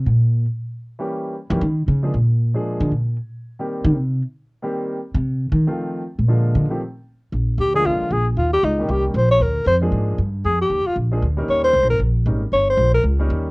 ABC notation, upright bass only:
X:1
M:4/4
L:1/8
Q:"Swing" 1/4=231
K:Eb
V:1 name="Upright bass" clef=bass
B,,3 z4 z | z3 =E, _E,2 ^C,2 | B,,3 z2 D, B,,2 | z4 z E, C,2 |
z6 z C,- | C,2 E, z4 B,,- | B,,2 D, z4 z | B,,,2 D,,2 C,, z B,,,2 |
E,,2 _D,,2 C,,2 B,,,2 | D,,2 F,,2 A,,2 G,,2 | F,,2 E,, z B,,,2 D,,2 | E,,2 (3C,, B,,, G,,, B,,,2 A,,,2 |
G,,,2 B,,,2 _D,,2 E,,2 |]